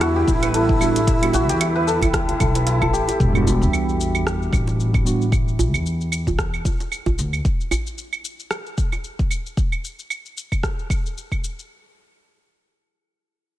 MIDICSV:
0, 0, Header, 1, 9, 480
1, 0, Start_track
1, 0, Key_signature, 1, "minor"
1, 0, Tempo, 530973
1, 971, Time_signature, 4, 2, 24, 8
1, 12282, End_track
2, 0, Start_track
2, 0, Title_t, "Santur"
2, 0, Program_c, 0, 15
2, 0, Note_on_c, 0, 64, 73
2, 0, Note_on_c, 0, 69, 105
2, 0, Note_on_c, 0, 71, 97
2, 0, Note_on_c, 0, 76, 74
2, 6, Note_on_c, 0, 66, 103
2, 144, Note_on_c, 0, 67, 103
2, 199, Note_off_c, 0, 66, 0
2, 245, Note_off_c, 0, 64, 0
2, 249, Note_on_c, 0, 64, 74
2, 379, Note_off_c, 0, 71, 0
2, 382, Note_on_c, 0, 71, 104
2, 485, Note_off_c, 0, 69, 0
2, 488, Note_on_c, 0, 69, 102
2, 623, Note_off_c, 0, 64, 0
2, 626, Note_on_c, 0, 64, 78
2, 725, Note_off_c, 0, 64, 0
2, 729, Note_on_c, 0, 64, 78
2, 860, Note_off_c, 0, 64, 0
2, 864, Note_on_c, 0, 64, 82
2, 965, Note_off_c, 0, 76, 0
2, 969, Note_on_c, 0, 76, 87
2, 1102, Note_off_c, 0, 64, 0
2, 1105, Note_on_c, 0, 64, 72
2, 1212, Note_on_c, 0, 66, 108
2, 1266, Note_off_c, 0, 67, 0
2, 1349, Note_on_c, 0, 67, 105
2, 1404, Note_off_c, 0, 66, 0
2, 1448, Note_off_c, 0, 64, 0
2, 1452, Note_on_c, 0, 64, 85
2, 1583, Note_off_c, 0, 71, 0
2, 1587, Note_on_c, 0, 71, 101
2, 1689, Note_off_c, 0, 69, 0
2, 1692, Note_on_c, 0, 69, 100
2, 1823, Note_off_c, 0, 64, 0
2, 1827, Note_on_c, 0, 64, 76
2, 1927, Note_off_c, 0, 64, 0
2, 1931, Note_on_c, 0, 64, 84
2, 2063, Note_off_c, 0, 64, 0
2, 2066, Note_on_c, 0, 64, 75
2, 2167, Note_off_c, 0, 69, 0
2, 2171, Note_on_c, 0, 69, 76
2, 2302, Note_off_c, 0, 71, 0
2, 2305, Note_on_c, 0, 71, 78
2, 2405, Note_off_c, 0, 64, 0
2, 2409, Note_on_c, 0, 64, 100
2, 2540, Note_off_c, 0, 69, 0
2, 2544, Note_on_c, 0, 69, 100
2, 2648, Note_off_c, 0, 67, 0
2, 2651, Note_on_c, 0, 67, 97
2, 2783, Note_off_c, 0, 67, 0
2, 2787, Note_on_c, 0, 67, 86
2, 3046, Note_off_c, 0, 76, 0
2, 4775, Note_off_c, 0, 71, 0
2, 5191, Note_off_c, 0, 69, 0
2, 5557, Note_off_c, 0, 64, 0
2, 5624, Note_off_c, 0, 67, 0
2, 12282, End_track
3, 0, Start_track
3, 0, Title_t, "Ney"
3, 0, Program_c, 1, 77
3, 0, Note_on_c, 1, 64, 104
3, 2411, Note_off_c, 1, 64, 0
3, 12282, End_track
4, 0, Start_track
4, 0, Title_t, "Synth keys"
4, 0, Program_c, 2, 88
4, 0, Note_on_c, 2, 55, 88
4, 0, Note_on_c, 2, 59, 75
4, 0, Note_on_c, 2, 62, 77
4, 0, Note_on_c, 2, 78, 95
4, 697, Note_off_c, 2, 55, 0
4, 703, Note_off_c, 2, 59, 0
4, 709, Note_off_c, 2, 62, 0
4, 714, Note_off_c, 2, 78, 0
4, 723, Note_on_c, 2, 55, 84
4, 729, Note_on_c, 2, 59, 74
4, 737, Note_on_c, 2, 62, 73
4, 742, Note_on_c, 2, 66, 92
4, 900, Note_off_c, 2, 55, 0
4, 903, Note_off_c, 2, 59, 0
4, 907, Note_off_c, 2, 62, 0
4, 909, Note_off_c, 2, 66, 0
4, 1101, Note_on_c, 2, 55, 83
4, 1107, Note_on_c, 2, 59, 73
4, 1115, Note_on_c, 2, 62, 72
4, 1119, Note_on_c, 2, 66, 87
4, 1192, Note_off_c, 2, 55, 0
4, 1195, Note_off_c, 2, 59, 0
4, 1199, Note_off_c, 2, 62, 0
4, 1201, Note_off_c, 2, 66, 0
4, 3008, Note_on_c, 2, 55, 79
4, 3020, Note_on_c, 2, 59, 77
4, 3030, Note_on_c, 2, 62, 73
4, 3043, Note_on_c, 2, 66, 90
4, 4536, Note_off_c, 2, 55, 0
4, 4542, Note_off_c, 2, 59, 0
4, 4547, Note_off_c, 2, 62, 0
4, 4554, Note_off_c, 2, 66, 0
4, 4562, Note_on_c, 2, 55, 75
4, 4567, Note_on_c, 2, 59, 73
4, 4574, Note_on_c, 2, 62, 66
4, 4579, Note_on_c, 2, 66, 86
4, 4739, Note_off_c, 2, 55, 0
4, 4742, Note_off_c, 2, 59, 0
4, 4745, Note_off_c, 2, 62, 0
4, 4748, Note_off_c, 2, 66, 0
4, 12282, End_track
5, 0, Start_track
5, 0, Title_t, "String section"
5, 0, Program_c, 3, 48
5, 0, Note_on_c, 3, 50, 82
5, 0, Note_on_c, 3, 52, 72
5, 0, Note_on_c, 3, 55, 68
5, 0, Note_on_c, 3, 59, 69
5, 2854, Note_off_c, 3, 52, 0
5, 2855, Note_off_c, 3, 50, 0
5, 2855, Note_off_c, 3, 55, 0
5, 2856, Note_off_c, 3, 59, 0
5, 12282, End_track
6, 0, Start_track
6, 0, Title_t, "Upright bass"
6, 0, Program_c, 4, 32
6, 0, Note_on_c, 4, 40, 97
6, 200, Note_off_c, 4, 40, 0
6, 250, Note_on_c, 4, 33, 102
6, 1348, Note_off_c, 4, 33, 0
6, 1348, Note_on_c, 4, 40, 102
6, 2070, Note_off_c, 4, 40, 0
6, 2070, Note_on_c, 4, 35, 102
6, 2141, Note_off_c, 4, 35, 0
6, 2173, Note_on_c, 4, 35, 94
6, 2654, Note_off_c, 4, 35, 0
6, 2654, Note_on_c, 4, 33, 92
6, 2747, Note_off_c, 4, 33, 0
6, 2893, Note_on_c, 4, 28, 106
6, 3268, Note_on_c, 4, 40, 90
6, 3282, Note_off_c, 4, 28, 0
6, 4042, Note_off_c, 4, 40, 0
6, 4092, Note_on_c, 4, 33, 97
6, 5187, Note_off_c, 4, 33, 0
6, 5187, Note_on_c, 4, 40, 91
6, 5961, Note_off_c, 4, 40, 0
6, 6497, Note_on_c, 4, 38, 92
6, 6672, Note_off_c, 4, 38, 0
6, 12282, End_track
7, 0, Start_track
7, 0, Title_t, "Sub drop"
7, 0, Program_c, 5, 103
7, 2893, Note_on_c, 5, 60, 69
7, 4812, Note_off_c, 5, 60, 0
7, 12282, End_track
8, 0, Start_track
8, 0, Title_t, "Djembe"
8, 390, Note_on_c, 9, 62, 55
8, 481, Note_off_c, 9, 62, 0
8, 1206, Note_on_c, 9, 62, 59
8, 1211, Note_on_c, 9, 64, 89
8, 1212, Note_on_c, 9, 63, 61
8, 1296, Note_off_c, 9, 62, 0
8, 1302, Note_off_c, 9, 63, 0
8, 1302, Note_off_c, 9, 64, 0
8, 1822, Note_on_c, 9, 64, 85
8, 1913, Note_off_c, 9, 64, 0
8, 2174, Note_on_c, 9, 63, 63
8, 2265, Note_off_c, 9, 63, 0
8, 2312, Note_on_c, 9, 62, 60
8, 2402, Note_off_c, 9, 62, 0
8, 2552, Note_on_c, 9, 63, 65
8, 2556, Note_on_c, 9, 64, 97
8, 2643, Note_off_c, 9, 63, 0
8, 2647, Note_off_c, 9, 64, 0
8, 2780, Note_on_c, 9, 63, 61
8, 2871, Note_off_c, 9, 63, 0
8, 3137, Note_on_c, 9, 64, 81
8, 3140, Note_on_c, 9, 62, 58
8, 3227, Note_off_c, 9, 64, 0
8, 3230, Note_off_c, 9, 62, 0
8, 4225, Note_on_c, 9, 62, 51
8, 4316, Note_off_c, 9, 62, 0
8, 5054, Note_on_c, 9, 62, 50
8, 5055, Note_on_c, 9, 64, 104
8, 5145, Note_off_c, 9, 62, 0
8, 5145, Note_off_c, 9, 64, 0
8, 5675, Note_on_c, 9, 64, 88
8, 5766, Note_off_c, 9, 64, 0
8, 6012, Note_on_c, 9, 63, 63
8, 6103, Note_off_c, 9, 63, 0
8, 6151, Note_on_c, 9, 62, 50
8, 6241, Note_off_c, 9, 62, 0
8, 6384, Note_on_c, 9, 64, 96
8, 6475, Note_off_c, 9, 64, 0
8, 6971, Note_on_c, 9, 64, 88
8, 6975, Note_on_c, 9, 62, 50
8, 7062, Note_off_c, 9, 64, 0
8, 7066, Note_off_c, 9, 62, 0
8, 8069, Note_on_c, 9, 62, 45
8, 8159, Note_off_c, 9, 62, 0
8, 12282, End_track
9, 0, Start_track
9, 0, Title_t, "Drums"
9, 10, Note_on_c, 9, 37, 75
9, 10, Note_on_c, 9, 42, 53
9, 10, Note_on_c, 9, 75, 80
9, 15, Note_on_c, 9, 82, 34
9, 101, Note_off_c, 9, 37, 0
9, 101, Note_off_c, 9, 42, 0
9, 101, Note_off_c, 9, 75, 0
9, 105, Note_off_c, 9, 82, 0
9, 250, Note_on_c, 9, 36, 105
9, 253, Note_on_c, 9, 82, 73
9, 340, Note_off_c, 9, 36, 0
9, 344, Note_off_c, 9, 82, 0
9, 386, Note_on_c, 9, 42, 43
9, 386, Note_on_c, 9, 75, 86
9, 390, Note_on_c, 9, 82, 41
9, 476, Note_off_c, 9, 42, 0
9, 476, Note_off_c, 9, 75, 0
9, 481, Note_off_c, 9, 82, 0
9, 490, Note_on_c, 9, 42, 59
9, 495, Note_on_c, 9, 82, 33
9, 581, Note_off_c, 9, 42, 0
9, 585, Note_off_c, 9, 82, 0
9, 625, Note_on_c, 9, 36, 96
9, 716, Note_off_c, 9, 36, 0
9, 731, Note_on_c, 9, 75, 80
9, 735, Note_on_c, 9, 82, 72
9, 821, Note_off_c, 9, 75, 0
9, 825, Note_off_c, 9, 82, 0
9, 868, Note_on_c, 9, 42, 46
9, 873, Note_on_c, 9, 82, 44
9, 959, Note_off_c, 9, 42, 0
9, 963, Note_off_c, 9, 82, 0
9, 970, Note_on_c, 9, 36, 115
9, 973, Note_on_c, 9, 42, 60
9, 977, Note_on_c, 9, 82, 32
9, 1061, Note_off_c, 9, 36, 0
9, 1063, Note_off_c, 9, 42, 0
9, 1068, Note_off_c, 9, 82, 0
9, 1109, Note_on_c, 9, 42, 56
9, 1109, Note_on_c, 9, 75, 85
9, 1200, Note_off_c, 9, 42, 0
9, 1200, Note_off_c, 9, 75, 0
9, 1213, Note_on_c, 9, 42, 32
9, 1218, Note_on_c, 9, 82, 79
9, 1303, Note_off_c, 9, 42, 0
9, 1308, Note_off_c, 9, 82, 0
9, 1350, Note_on_c, 9, 42, 50
9, 1355, Note_on_c, 9, 82, 47
9, 1441, Note_off_c, 9, 42, 0
9, 1445, Note_off_c, 9, 82, 0
9, 1453, Note_on_c, 9, 42, 60
9, 1453, Note_on_c, 9, 75, 82
9, 1458, Note_on_c, 9, 82, 33
9, 1544, Note_off_c, 9, 42, 0
9, 1544, Note_off_c, 9, 75, 0
9, 1548, Note_off_c, 9, 82, 0
9, 1697, Note_on_c, 9, 82, 73
9, 1788, Note_off_c, 9, 82, 0
9, 1827, Note_on_c, 9, 36, 63
9, 1831, Note_on_c, 9, 42, 46
9, 1831, Note_on_c, 9, 75, 82
9, 1835, Note_on_c, 9, 82, 46
9, 1917, Note_off_c, 9, 36, 0
9, 1921, Note_off_c, 9, 42, 0
9, 1921, Note_off_c, 9, 75, 0
9, 1926, Note_off_c, 9, 82, 0
9, 1931, Note_on_c, 9, 36, 108
9, 1934, Note_on_c, 9, 37, 84
9, 1934, Note_on_c, 9, 42, 58
9, 1938, Note_on_c, 9, 82, 34
9, 2021, Note_off_c, 9, 36, 0
9, 2024, Note_off_c, 9, 37, 0
9, 2024, Note_off_c, 9, 42, 0
9, 2029, Note_off_c, 9, 82, 0
9, 2068, Note_on_c, 9, 42, 33
9, 2159, Note_off_c, 9, 42, 0
9, 2171, Note_on_c, 9, 42, 34
9, 2171, Note_on_c, 9, 75, 80
9, 2172, Note_on_c, 9, 36, 101
9, 2176, Note_on_c, 9, 82, 77
9, 2262, Note_off_c, 9, 36, 0
9, 2262, Note_off_c, 9, 42, 0
9, 2262, Note_off_c, 9, 75, 0
9, 2266, Note_off_c, 9, 82, 0
9, 2308, Note_on_c, 9, 42, 47
9, 2312, Note_on_c, 9, 82, 43
9, 2398, Note_off_c, 9, 42, 0
9, 2403, Note_off_c, 9, 82, 0
9, 2411, Note_on_c, 9, 42, 55
9, 2415, Note_on_c, 9, 82, 33
9, 2501, Note_off_c, 9, 42, 0
9, 2506, Note_off_c, 9, 82, 0
9, 2547, Note_on_c, 9, 75, 83
9, 2548, Note_on_c, 9, 36, 60
9, 2637, Note_off_c, 9, 75, 0
9, 2639, Note_off_c, 9, 36, 0
9, 2658, Note_on_c, 9, 82, 74
9, 2749, Note_off_c, 9, 82, 0
9, 2790, Note_on_c, 9, 42, 47
9, 2795, Note_on_c, 9, 82, 43
9, 2881, Note_off_c, 9, 42, 0
9, 2885, Note_off_c, 9, 82, 0
9, 2893, Note_on_c, 9, 36, 108
9, 2899, Note_on_c, 9, 82, 42
9, 2983, Note_off_c, 9, 36, 0
9, 2989, Note_off_c, 9, 82, 0
9, 3029, Note_on_c, 9, 75, 77
9, 3034, Note_on_c, 9, 82, 23
9, 3120, Note_off_c, 9, 75, 0
9, 3124, Note_off_c, 9, 82, 0
9, 3139, Note_on_c, 9, 82, 74
9, 3230, Note_off_c, 9, 82, 0
9, 3277, Note_on_c, 9, 82, 35
9, 3367, Note_off_c, 9, 82, 0
9, 3375, Note_on_c, 9, 75, 77
9, 3379, Note_on_c, 9, 82, 43
9, 3465, Note_off_c, 9, 75, 0
9, 3470, Note_off_c, 9, 82, 0
9, 3516, Note_on_c, 9, 82, 21
9, 3606, Note_off_c, 9, 82, 0
9, 3620, Note_on_c, 9, 82, 72
9, 3710, Note_off_c, 9, 82, 0
9, 3750, Note_on_c, 9, 75, 74
9, 3754, Note_on_c, 9, 82, 33
9, 3840, Note_off_c, 9, 75, 0
9, 3845, Note_off_c, 9, 82, 0
9, 3857, Note_on_c, 9, 37, 80
9, 3862, Note_on_c, 9, 82, 44
9, 3948, Note_off_c, 9, 37, 0
9, 3952, Note_off_c, 9, 82, 0
9, 3999, Note_on_c, 9, 82, 19
9, 4089, Note_off_c, 9, 82, 0
9, 4091, Note_on_c, 9, 36, 100
9, 4096, Note_on_c, 9, 75, 76
9, 4101, Note_on_c, 9, 82, 68
9, 4182, Note_off_c, 9, 36, 0
9, 4187, Note_off_c, 9, 75, 0
9, 4191, Note_off_c, 9, 82, 0
9, 4237, Note_on_c, 9, 82, 30
9, 4327, Note_off_c, 9, 82, 0
9, 4339, Note_on_c, 9, 82, 41
9, 4430, Note_off_c, 9, 82, 0
9, 4467, Note_on_c, 9, 36, 95
9, 4471, Note_on_c, 9, 75, 69
9, 4475, Note_on_c, 9, 82, 22
9, 4558, Note_off_c, 9, 36, 0
9, 4561, Note_off_c, 9, 75, 0
9, 4566, Note_off_c, 9, 82, 0
9, 4578, Note_on_c, 9, 82, 72
9, 4669, Note_off_c, 9, 82, 0
9, 4715, Note_on_c, 9, 82, 29
9, 4805, Note_off_c, 9, 82, 0
9, 4811, Note_on_c, 9, 36, 109
9, 4814, Note_on_c, 9, 75, 69
9, 4818, Note_on_c, 9, 82, 45
9, 4901, Note_off_c, 9, 36, 0
9, 4904, Note_off_c, 9, 75, 0
9, 4908, Note_off_c, 9, 82, 0
9, 4954, Note_on_c, 9, 82, 22
9, 5045, Note_off_c, 9, 82, 0
9, 5059, Note_on_c, 9, 82, 74
9, 5149, Note_off_c, 9, 82, 0
9, 5190, Note_on_c, 9, 75, 74
9, 5194, Note_on_c, 9, 82, 34
9, 5280, Note_off_c, 9, 75, 0
9, 5285, Note_off_c, 9, 82, 0
9, 5298, Note_on_c, 9, 82, 45
9, 5389, Note_off_c, 9, 82, 0
9, 5433, Note_on_c, 9, 82, 22
9, 5524, Note_off_c, 9, 82, 0
9, 5533, Note_on_c, 9, 75, 65
9, 5537, Note_on_c, 9, 82, 76
9, 5623, Note_off_c, 9, 75, 0
9, 5627, Note_off_c, 9, 82, 0
9, 5668, Note_on_c, 9, 36, 61
9, 5672, Note_on_c, 9, 82, 32
9, 5758, Note_off_c, 9, 36, 0
9, 5763, Note_off_c, 9, 82, 0
9, 5773, Note_on_c, 9, 36, 103
9, 5773, Note_on_c, 9, 37, 74
9, 5778, Note_on_c, 9, 82, 43
9, 5863, Note_off_c, 9, 36, 0
9, 5864, Note_off_c, 9, 37, 0
9, 5868, Note_off_c, 9, 82, 0
9, 5909, Note_on_c, 9, 75, 68
9, 5914, Note_on_c, 9, 82, 21
9, 6000, Note_off_c, 9, 75, 0
9, 6004, Note_off_c, 9, 82, 0
9, 6013, Note_on_c, 9, 36, 96
9, 6016, Note_on_c, 9, 82, 71
9, 6103, Note_off_c, 9, 36, 0
9, 6106, Note_off_c, 9, 82, 0
9, 6152, Note_on_c, 9, 82, 33
9, 6242, Note_off_c, 9, 82, 0
9, 6253, Note_on_c, 9, 75, 70
9, 6257, Note_on_c, 9, 82, 43
9, 6343, Note_off_c, 9, 75, 0
9, 6348, Note_off_c, 9, 82, 0
9, 6389, Note_on_c, 9, 36, 57
9, 6391, Note_on_c, 9, 82, 20
9, 6480, Note_off_c, 9, 36, 0
9, 6482, Note_off_c, 9, 82, 0
9, 6496, Note_on_c, 9, 82, 74
9, 6586, Note_off_c, 9, 82, 0
9, 6628, Note_on_c, 9, 75, 67
9, 6632, Note_on_c, 9, 82, 30
9, 6718, Note_off_c, 9, 75, 0
9, 6723, Note_off_c, 9, 82, 0
9, 6734, Note_on_c, 9, 36, 109
9, 6738, Note_on_c, 9, 82, 42
9, 6824, Note_off_c, 9, 36, 0
9, 6828, Note_off_c, 9, 82, 0
9, 6877, Note_on_c, 9, 82, 23
9, 6967, Note_off_c, 9, 82, 0
9, 6972, Note_on_c, 9, 75, 72
9, 6977, Note_on_c, 9, 82, 71
9, 7063, Note_off_c, 9, 75, 0
9, 7067, Note_off_c, 9, 82, 0
9, 7112, Note_on_c, 9, 82, 34
9, 7202, Note_off_c, 9, 82, 0
9, 7215, Note_on_c, 9, 82, 42
9, 7305, Note_off_c, 9, 82, 0
9, 7347, Note_on_c, 9, 75, 69
9, 7351, Note_on_c, 9, 82, 22
9, 7437, Note_off_c, 9, 75, 0
9, 7442, Note_off_c, 9, 82, 0
9, 7456, Note_on_c, 9, 82, 69
9, 7546, Note_off_c, 9, 82, 0
9, 7591, Note_on_c, 9, 82, 31
9, 7681, Note_off_c, 9, 82, 0
9, 7690, Note_on_c, 9, 37, 75
9, 7690, Note_on_c, 9, 75, 70
9, 7694, Note_on_c, 9, 82, 40
9, 7780, Note_off_c, 9, 37, 0
9, 7780, Note_off_c, 9, 75, 0
9, 7785, Note_off_c, 9, 82, 0
9, 7831, Note_on_c, 9, 82, 20
9, 7921, Note_off_c, 9, 82, 0
9, 7934, Note_on_c, 9, 82, 74
9, 7935, Note_on_c, 9, 36, 109
9, 8024, Note_off_c, 9, 82, 0
9, 8025, Note_off_c, 9, 36, 0
9, 8066, Note_on_c, 9, 75, 66
9, 8071, Note_on_c, 9, 82, 30
9, 8157, Note_off_c, 9, 75, 0
9, 8161, Note_off_c, 9, 82, 0
9, 8174, Note_on_c, 9, 82, 42
9, 8264, Note_off_c, 9, 82, 0
9, 8310, Note_on_c, 9, 36, 96
9, 8313, Note_on_c, 9, 82, 21
9, 8400, Note_off_c, 9, 36, 0
9, 8403, Note_off_c, 9, 82, 0
9, 8413, Note_on_c, 9, 75, 66
9, 8417, Note_on_c, 9, 82, 75
9, 8503, Note_off_c, 9, 75, 0
9, 8507, Note_off_c, 9, 82, 0
9, 8554, Note_on_c, 9, 82, 31
9, 8645, Note_off_c, 9, 82, 0
9, 8654, Note_on_c, 9, 36, 110
9, 8658, Note_on_c, 9, 82, 39
9, 8744, Note_off_c, 9, 36, 0
9, 8748, Note_off_c, 9, 82, 0
9, 8790, Note_on_c, 9, 75, 76
9, 8794, Note_on_c, 9, 82, 23
9, 8880, Note_off_c, 9, 75, 0
9, 8885, Note_off_c, 9, 82, 0
9, 8899, Note_on_c, 9, 82, 68
9, 8989, Note_off_c, 9, 82, 0
9, 9032, Note_on_c, 9, 82, 31
9, 9123, Note_off_c, 9, 82, 0
9, 9133, Note_on_c, 9, 75, 72
9, 9138, Note_on_c, 9, 82, 41
9, 9224, Note_off_c, 9, 75, 0
9, 9228, Note_off_c, 9, 82, 0
9, 9272, Note_on_c, 9, 82, 19
9, 9363, Note_off_c, 9, 82, 0
9, 9377, Note_on_c, 9, 82, 68
9, 9467, Note_off_c, 9, 82, 0
9, 9509, Note_on_c, 9, 36, 58
9, 9511, Note_on_c, 9, 75, 69
9, 9515, Note_on_c, 9, 82, 31
9, 9600, Note_off_c, 9, 36, 0
9, 9601, Note_off_c, 9, 75, 0
9, 9605, Note_off_c, 9, 82, 0
9, 9613, Note_on_c, 9, 36, 94
9, 9614, Note_on_c, 9, 37, 67
9, 9619, Note_on_c, 9, 82, 42
9, 9703, Note_off_c, 9, 36, 0
9, 9705, Note_off_c, 9, 37, 0
9, 9709, Note_off_c, 9, 82, 0
9, 9756, Note_on_c, 9, 82, 18
9, 9846, Note_off_c, 9, 82, 0
9, 9854, Note_on_c, 9, 36, 97
9, 9856, Note_on_c, 9, 75, 65
9, 9861, Note_on_c, 9, 82, 69
9, 9944, Note_off_c, 9, 36, 0
9, 9947, Note_off_c, 9, 75, 0
9, 9951, Note_off_c, 9, 82, 0
9, 9999, Note_on_c, 9, 82, 31
9, 10090, Note_off_c, 9, 82, 0
9, 10102, Note_on_c, 9, 82, 40
9, 10193, Note_off_c, 9, 82, 0
9, 10230, Note_on_c, 9, 36, 52
9, 10234, Note_on_c, 9, 75, 68
9, 10239, Note_on_c, 9, 82, 18
9, 10320, Note_off_c, 9, 36, 0
9, 10325, Note_off_c, 9, 75, 0
9, 10329, Note_off_c, 9, 82, 0
9, 10342, Note_on_c, 9, 82, 69
9, 10433, Note_off_c, 9, 82, 0
9, 10479, Note_on_c, 9, 82, 29
9, 10569, Note_off_c, 9, 82, 0
9, 12282, End_track
0, 0, End_of_file